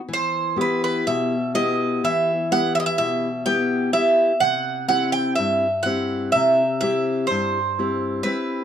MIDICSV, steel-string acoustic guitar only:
0, 0, Header, 1, 2, 480
1, 0, Start_track
1, 0, Key_signature, 1, "minor"
1, 0, Tempo, 956938
1, 49, Time_signature, 9, 3, 24, 8
1, 4335, End_track
2, 0, Start_track
2, 0, Title_t, "Steel-string acoustic guitar"
2, 0, Program_c, 0, 25
2, 42, Note_on_c, 0, 52, 66
2, 283, Note_on_c, 0, 59, 50
2, 287, Note_on_c, 0, 64, 43
2, 288, Note_on_c, 0, 67, 52
2, 513, Note_off_c, 0, 52, 0
2, 535, Note_on_c, 0, 47, 64
2, 671, Note_off_c, 0, 59, 0
2, 673, Note_off_c, 0, 64, 0
2, 673, Note_off_c, 0, 67, 0
2, 774, Note_on_c, 0, 59, 49
2, 777, Note_on_c, 0, 67, 55
2, 779, Note_on_c, 0, 64, 43
2, 1000, Note_off_c, 0, 47, 0
2, 1023, Note_on_c, 0, 52, 67
2, 1158, Note_off_c, 0, 59, 0
2, 1159, Note_off_c, 0, 67, 0
2, 1161, Note_off_c, 0, 64, 0
2, 1261, Note_on_c, 0, 59, 49
2, 1263, Note_on_c, 0, 64, 43
2, 1266, Note_on_c, 0, 67, 57
2, 1484, Note_off_c, 0, 52, 0
2, 1499, Note_on_c, 0, 47, 61
2, 1642, Note_off_c, 0, 59, 0
2, 1643, Note_off_c, 0, 64, 0
2, 1645, Note_off_c, 0, 67, 0
2, 1735, Note_on_c, 0, 59, 46
2, 1737, Note_on_c, 0, 67, 49
2, 1740, Note_on_c, 0, 64, 43
2, 1962, Note_off_c, 0, 47, 0
2, 1965, Note_off_c, 0, 59, 0
2, 1965, Note_off_c, 0, 64, 0
2, 1967, Note_off_c, 0, 67, 0
2, 1969, Note_on_c, 0, 59, 49
2, 1972, Note_on_c, 0, 64, 45
2, 1976, Note_on_c, 0, 67, 56
2, 2164, Note_off_c, 0, 59, 0
2, 2164, Note_off_c, 0, 64, 0
2, 2165, Note_off_c, 0, 67, 0
2, 2213, Note_on_c, 0, 48, 69
2, 2449, Note_on_c, 0, 60, 47
2, 2453, Note_on_c, 0, 67, 52
2, 2455, Note_on_c, 0, 64, 42
2, 2678, Note_off_c, 0, 48, 0
2, 2701, Note_on_c, 0, 43, 63
2, 2834, Note_off_c, 0, 60, 0
2, 2837, Note_off_c, 0, 67, 0
2, 2838, Note_off_c, 0, 64, 0
2, 2937, Note_on_c, 0, 60, 50
2, 2941, Note_on_c, 0, 67, 54
2, 2942, Note_on_c, 0, 64, 47
2, 3162, Note_off_c, 0, 43, 0
2, 3186, Note_on_c, 0, 48, 68
2, 3319, Note_off_c, 0, 60, 0
2, 3321, Note_off_c, 0, 67, 0
2, 3322, Note_off_c, 0, 64, 0
2, 3421, Note_on_c, 0, 60, 50
2, 3424, Note_on_c, 0, 64, 44
2, 3426, Note_on_c, 0, 67, 59
2, 3644, Note_off_c, 0, 48, 0
2, 3664, Note_on_c, 0, 43, 69
2, 3800, Note_off_c, 0, 60, 0
2, 3802, Note_off_c, 0, 64, 0
2, 3804, Note_off_c, 0, 67, 0
2, 3906, Note_on_c, 0, 64, 45
2, 3908, Note_on_c, 0, 60, 47
2, 3910, Note_on_c, 0, 67, 54
2, 4122, Note_off_c, 0, 43, 0
2, 4130, Note_off_c, 0, 60, 0
2, 4130, Note_off_c, 0, 64, 0
2, 4135, Note_off_c, 0, 67, 0
2, 4136, Note_on_c, 0, 60, 52
2, 4138, Note_on_c, 0, 64, 48
2, 4141, Note_on_c, 0, 67, 58
2, 4325, Note_off_c, 0, 60, 0
2, 4325, Note_off_c, 0, 64, 0
2, 4328, Note_off_c, 0, 67, 0
2, 4335, End_track
0, 0, End_of_file